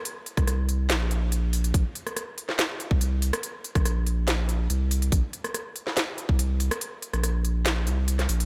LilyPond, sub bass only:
\new Staff \with { instrumentName = "Sub bass" } { \clef bass \time 4/4 \key bes \dorian \tempo 4 = 142 r8. c,4~ c,16 bes,,2 | bes,,16 r2 r8 c,4 r16 | r8. bes,,2~ bes,,16 c,4 | bes,,16 r2 r8 c,4 r16 |
r8. bes,,4.~ bes,,16 c,4 bes,,8 | }